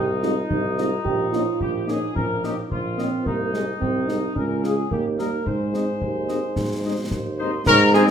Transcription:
Already playing: tuba C2, woodwind section D#4
0.22 french horn section G#3 C4 D#4, euphonium F4, trumpet section D#5, snare
0.49 tuba C2, euphonium D#4, concert bass drum
0.78 french horn section G#3 C4 D#4, euphonium F4, trumpet section D#5, snare
1.05 tuba A#1, euphonium G4, concert bass drum
1.32 french horn section A#3 C#4 D#4, euphonium F4, trumpet section D#5, snare
1.60 tuba A#1, woodwind section G4, concert bass drum
1.87 french horn section A#3 C#4 D#4, euphonium D#4, woodwind section G#4, trumpet section D#5, snare
2.15 tuba A#1, euphonium C#4, woodwind section A#4, concert bass drum
2.43 french horn section A#3 C#4 D#4, woodwind section G4, trumpet section D#5, snare
2.71 tuba A#1, woodwind section F4, concert bass drum
2.97 french horn section A#3 C#4 D#4, euphonium C4, trumpet section D#5, snare
3.25 tuba C2, euphonium A#3, woodwind section D#4, concert bass drum
3.53 euphonium G#3, french horn section G#3 C4 D#4, trumpet section D#5, snare
3.80 tuba C2, euphonium C4, concert bass drum
4.07 french horn section G#3 C4 D#4, euphonium D#4, trumpet section D#5, snare
4.36 tuba C#2, euphonium C#4, woodwind section A#4, concert bass drum
4.63 french horn section G#3 F4 G#4, woodwind section G#4, trumpet section F5, snare
4.90 tuba D#2, euphonium A#3, woodwind section G4, concert bass drum
5.18 french horn section G3 A#3 D#4, woodwind section A#4, trumpet section D#5, snare
5.46 tuba G#2, euphonium G#3, woodwind section C5, concert bass drum
5.73 french horn section G#3 C4 D#4, trumpet section D#5, snare
6.01 tuba D#2, concert bass drum
6.29 french horn section G#3 C4 D#4, trumpet section D#5, snare
6.56 tuba G#2, concert bass drum, snare
6.84 french horn section G#3 C4 D#4, trumpet section D#5
7.11 tuba D#2, concert bass drum, snare
7.38 french horn section G#3 C4 D#4, woodwind section D#4, trumpet section C5 D#5, piccolo C6
7.66 tuba G#2, woodwind section C#4, trumpet section A#4, piccolo A#5, concert bass drum, snare, crash
7.93 french horn section G#3 C4 D#4, woodwind section C4, trumpet section G#4, piccolo G#5, snare
8.08 snare

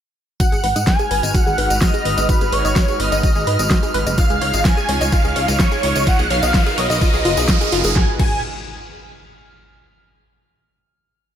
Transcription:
0.40 supersaw synth G#3 D#4 F#4 B4, synth pluck F#4, analog synth lead F#5, synth texture F6, kick, closed hi-hat, tambourine, riser
0.52 analog synth bass G#1, synth pluck G#4, closed hi-hat, tambourine
0.64 analog synth bass G#1, synth pluck B4, open hi-hat
0.76 analog synth bass G#2, synth pluck D#5, closed hi-hat, tambourine
0.87 synth pluck F#4, analog synth lead G#5, kick, snare, closed hi-hat, tambourine
0.99 synth pluck G#4, closed hi-hat, tambourine
1.11 analog synth bass G#1, synth pluck B4, open hi-hat
1.23 analog synth bass G#1, synth pluck D#5, closed hi-hat, tambourine
1.34 synth pluck F#4, analog synth lead F#5, kick, closed hi-hat, tambourine
1.47 analog synth bass G#1, synth pluck G#4, tambourine
1.58 analog synth bass G#1, synth pluck B4, open hi-hat
1.70 analog synth bass G#1, synth pluck D#5, closed hi-hat, tambourine
1.81 synth pluck F#4, analog synth lead D#5, kick, snare, closed hi-hat, tambourine
1.94 synth pluck G#4, closed hi-hat, tambourine
2.05 analog synth bass G#1, synth pluck B4, open hi-hat
2.17 analog synth bass G#1, synth pluck D#5, closed hi-hat, tambourine
2.29 synth pluck F#4, analog synth lead B4, kick, closed hi-hat, tambourine
2.41 analog synth bass G#1, synth pluck G#4, closed hi-hat, tambourine
2.52 analog synth bass G#1, synth pluck B4, analog synth lead C#5, open hi-hat
2.65 analog synth bass G#1, synth pluck D#5, closed hi-hat, tambourine
2.76 synth pluck F#4, kick, snare, closed hi-hat, tambourine
2.88 synth pluck G#4, closed hi-hat, tambourine
3.00 analog synth bass G#1, synth pluck B4, analog synth lead D#5, open hi-hat
3.12 analog synth bass G#1, synth pluck D#5, closed hi-hat, tambourine
3.23 synth pluck F#4, kick, closed hi-hat, tambourine
3.35 analog synth bass G#1, synth pluck G#4, tambourine
3.47 analog synth bass G#2, synth pluck B4, open hi-hat
3.59 analog synth bass G#1, synth pluck D#5, closed hi-hat, tambourine
3.70 synth pluck F#4, kick, snare, closed hi-hat, tambourine
3.83 synth pluck G#4, closed hi-hat, tambourine
3.94 analog synth bass G#1, synth pluck B4, open hi-hat
4.07 analog synth bass F#1, synth pluck D#5, closed hi-hat, tambourine
4.18 supersaw synth D#4 F4 C#5, synth pluck F4, analog synth lead F5, kick, closed hi-hat, tambourine
4.30 analog synth bass C#2, synth pluck G#4, closed hi-hat, tambourine
4.41 analog synth bass C#2, synth pluck C#5, open hi-hat
4.53 analog synth bass G#1, synth pluck D#5, closed hi-hat, tambourine
4.65 synth pluck F4, analog synth lead G#5, kick, snare, closed hi-hat, tambourine
4.77 synth pluck G#4, closed hi-hat, tambourine
4.89 analog synth bass C#2, synth pluck C#5, open hi-hat
5.01 analog synth bass C#2, synth pluck D#5, closed hi-hat, tambourine
5.12 synth pluck F4, analog synth lead F5, kick, closed hi-hat, tambourine
5.25 analog synth bass C#2, synth pluck G#4, tambourine
5.36 analog synth bass C#2, synth pluck C#5, open hi-hat
5.48 analog synth bass C#2, synth pluck D#5, closed hi-hat, tambourine
5.59 synth pluck F4, analog synth lead C#5, kick, snare, closed hi-hat, tambourine
5.71 synth pluck G#4, closed hi-hat, tambourine
5.83 analog synth bass C#2, synth pluck C#5, open hi-hat
5.96 analog synth bass C#2, synth pluck D#5, closed hi-hat, tambourine
6.07 synth pluck F4, supersaw synth F#4 A#4 B4, analog synth lead F#5, kick, closed hi-hat, tambourine
6.19 analog synth bass B1, synth pluck G#4, closed hi-hat, tambourine
6.30 analog synth bass B1, synth pluck C#5, analog synth lead F5, open hi-hat
6.43 analog synth bass B1, synth pluck D#5, closed hi-hat, tambourine
6.54 synth pluck F4, kick, snare, closed hi-hat, tambourine
6.66 synth pluck G#4, closed hi-hat, tambourine
6.78 analog synth bass B1, synth pluck C#5, analog synth lead D#5, open hi-hat
6.90 analog synth bass B1, synth pluck D#5, closed hi-hat, tambourine
7.01 synth pluck F4, kick, closed hi-hat, tambourine
7.13 analog synth bass B1, synth pluck G#4, tambourine
7.25 analog synth bass F#1, synth pluck F4, open hi-hat
7.37 analog synth bass B1, synth pluck G#4, closed hi-hat, tambourine
7.48 synth pluck F4, kick, snare, closed hi-hat, tambourine
7.61 synth pluck G#4, closed hi-hat, tambourine
7.72 analog synth bass F#1, synth pluck F4, open hi-hat
7.84 analog synth bass F#1, synth pluck G#4, closed hi-hat, tambourine
7.96 analog synth bass G#1, synth pluck F#4, analog synth lead G#5, kick, snare, impact
8.20 analog synth bass G#1, synth pluck F#4, analog synth lead G#5, kick, crash

